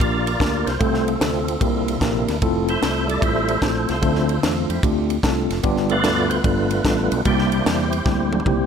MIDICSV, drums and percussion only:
0, 0, Header, 1, 2, 480
1, 0, Start_track
1, 0, Key_signature, -1, "major"
1, 0, Tempo, 402955
1, 960, Time_signature, 4, 2, 24, 8
1, 10319, End_track
2, 0, Start_track
2, 0, Title_t, "Drums"
2, 1, Note_on_c, 9, 36, 112
2, 13, Note_on_c, 9, 51, 72
2, 120, Note_off_c, 9, 36, 0
2, 132, Note_off_c, 9, 51, 0
2, 322, Note_on_c, 9, 51, 61
2, 442, Note_off_c, 9, 51, 0
2, 478, Note_on_c, 9, 36, 89
2, 492, Note_on_c, 9, 38, 106
2, 499, Note_on_c, 9, 51, 67
2, 597, Note_off_c, 9, 36, 0
2, 611, Note_off_c, 9, 38, 0
2, 618, Note_off_c, 9, 51, 0
2, 801, Note_on_c, 9, 51, 60
2, 808, Note_on_c, 9, 38, 37
2, 920, Note_off_c, 9, 51, 0
2, 928, Note_off_c, 9, 38, 0
2, 959, Note_on_c, 9, 51, 70
2, 961, Note_on_c, 9, 36, 106
2, 1078, Note_off_c, 9, 51, 0
2, 1080, Note_off_c, 9, 36, 0
2, 1117, Note_on_c, 9, 38, 37
2, 1236, Note_off_c, 9, 38, 0
2, 1284, Note_on_c, 9, 51, 51
2, 1403, Note_off_c, 9, 51, 0
2, 1445, Note_on_c, 9, 38, 127
2, 1450, Note_on_c, 9, 51, 83
2, 1564, Note_off_c, 9, 38, 0
2, 1569, Note_off_c, 9, 51, 0
2, 1765, Note_on_c, 9, 51, 60
2, 1884, Note_off_c, 9, 51, 0
2, 1918, Note_on_c, 9, 36, 119
2, 1924, Note_on_c, 9, 51, 73
2, 2037, Note_off_c, 9, 36, 0
2, 2043, Note_off_c, 9, 51, 0
2, 2242, Note_on_c, 9, 51, 65
2, 2361, Note_off_c, 9, 51, 0
2, 2396, Note_on_c, 9, 36, 82
2, 2403, Note_on_c, 9, 38, 107
2, 2410, Note_on_c, 9, 51, 65
2, 2515, Note_off_c, 9, 36, 0
2, 2523, Note_off_c, 9, 38, 0
2, 2530, Note_off_c, 9, 51, 0
2, 2720, Note_on_c, 9, 51, 63
2, 2727, Note_on_c, 9, 38, 37
2, 2839, Note_off_c, 9, 51, 0
2, 2846, Note_off_c, 9, 38, 0
2, 2880, Note_on_c, 9, 51, 71
2, 2882, Note_on_c, 9, 36, 111
2, 3000, Note_off_c, 9, 51, 0
2, 3002, Note_off_c, 9, 36, 0
2, 3197, Note_on_c, 9, 51, 56
2, 3316, Note_off_c, 9, 51, 0
2, 3367, Note_on_c, 9, 38, 116
2, 3372, Note_on_c, 9, 51, 89
2, 3486, Note_off_c, 9, 38, 0
2, 3491, Note_off_c, 9, 51, 0
2, 3685, Note_on_c, 9, 51, 62
2, 3805, Note_off_c, 9, 51, 0
2, 3838, Note_on_c, 9, 36, 118
2, 3845, Note_on_c, 9, 51, 66
2, 3957, Note_off_c, 9, 36, 0
2, 3964, Note_off_c, 9, 51, 0
2, 4151, Note_on_c, 9, 51, 58
2, 4270, Note_off_c, 9, 51, 0
2, 4311, Note_on_c, 9, 36, 84
2, 4317, Note_on_c, 9, 38, 117
2, 4323, Note_on_c, 9, 51, 66
2, 4430, Note_off_c, 9, 36, 0
2, 4436, Note_off_c, 9, 38, 0
2, 4443, Note_off_c, 9, 51, 0
2, 4629, Note_on_c, 9, 51, 60
2, 4636, Note_on_c, 9, 38, 38
2, 4748, Note_off_c, 9, 51, 0
2, 4755, Note_off_c, 9, 38, 0
2, 4795, Note_on_c, 9, 51, 71
2, 4796, Note_on_c, 9, 36, 102
2, 4914, Note_off_c, 9, 51, 0
2, 4916, Note_off_c, 9, 36, 0
2, 4945, Note_on_c, 9, 38, 35
2, 5065, Note_off_c, 9, 38, 0
2, 5111, Note_on_c, 9, 51, 58
2, 5230, Note_off_c, 9, 51, 0
2, 5281, Note_on_c, 9, 38, 119
2, 5287, Note_on_c, 9, 51, 89
2, 5400, Note_off_c, 9, 38, 0
2, 5406, Note_off_c, 9, 51, 0
2, 5596, Note_on_c, 9, 51, 62
2, 5716, Note_off_c, 9, 51, 0
2, 5756, Note_on_c, 9, 36, 117
2, 5765, Note_on_c, 9, 51, 73
2, 5875, Note_off_c, 9, 36, 0
2, 5884, Note_off_c, 9, 51, 0
2, 6076, Note_on_c, 9, 51, 61
2, 6195, Note_off_c, 9, 51, 0
2, 6233, Note_on_c, 9, 36, 90
2, 6240, Note_on_c, 9, 38, 109
2, 6247, Note_on_c, 9, 51, 68
2, 6352, Note_off_c, 9, 36, 0
2, 6360, Note_off_c, 9, 38, 0
2, 6366, Note_off_c, 9, 51, 0
2, 6557, Note_on_c, 9, 51, 61
2, 6564, Note_on_c, 9, 38, 38
2, 6676, Note_off_c, 9, 51, 0
2, 6683, Note_off_c, 9, 38, 0
2, 6711, Note_on_c, 9, 51, 73
2, 6718, Note_on_c, 9, 36, 112
2, 6830, Note_off_c, 9, 51, 0
2, 6837, Note_off_c, 9, 36, 0
2, 6866, Note_on_c, 9, 38, 33
2, 6985, Note_off_c, 9, 38, 0
2, 7022, Note_on_c, 9, 51, 53
2, 7141, Note_off_c, 9, 51, 0
2, 7193, Note_on_c, 9, 38, 109
2, 7198, Note_on_c, 9, 51, 90
2, 7312, Note_off_c, 9, 38, 0
2, 7317, Note_off_c, 9, 51, 0
2, 7512, Note_on_c, 9, 51, 66
2, 7632, Note_off_c, 9, 51, 0
2, 7675, Note_on_c, 9, 36, 113
2, 7675, Note_on_c, 9, 51, 73
2, 7794, Note_off_c, 9, 36, 0
2, 7794, Note_off_c, 9, 51, 0
2, 7988, Note_on_c, 9, 51, 68
2, 8107, Note_off_c, 9, 51, 0
2, 8155, Note_on_c, 9, 36, 83
2, 8162, Note_on_c, 9, 38, 112
2, 8169, Note_on_c, 9, 51, 66
2, 8274, Note_off_c, 9, 36, 0
2, 8281, Note_off_c, 9, 38, 0
2, 8288, Note_off_c, 9, 51, 0
2, 8477, Note_on_c, 9, 51, 65
2, 8596, Note_off_c, 9, 51, 0
2, 8639, Note_on_c, 9, 51, 76
2, 8642, Note_on_c, 9, 36, 100
2, 8758, Note_off_c, 9, 51, 0
2, 8762, Note_off_c, 9, 36, 0
2, 8794, Note_on_c, 9, 38, 34
2, 8913, Note_off_c, 9, 38, 0
2, 8957, Note_on_c, 9, 51, 55
2, 9076, Note_off_c, 9, 51, 0
2, 9129, Note_on_c, 9, 38, 123
2, 9135, Note_on_c, 9, 51, 82
2, 9248, Note_off_c, 9, 38, 0
2, 9254, Note_off_c, 9, 51, 0
2, 9442, Note_on_c, 9, 51, 63
2, 9561, Note_off_c, 9, 51, 0
2, 9598, Note_on_c, 9, 36, 114
2, 9598, Note_on_c, 9, 38, 57
2, 9717, Note_off_c, 9, 36, 0
2, 9717, Note_off_c, 9, 38, 0
2, 9918, Note_on_c, 9, 48, 79
2, 10004, Note_off_c, 9, 48, 0
2, 10004, Note_on_c, 9, 48, 61
2, 10077, Note_on_c, 9, 36, 88
2, 10085, Note_on_c, 9, 47, 87
2, 10124, Note_off_c, 9, 48, 0
2, 10197, Note_off_c, 9, 36, 0
2, 10204, Note_off_c, 9, 47, 0
2, 10319, End_track
0, 0, End_of_file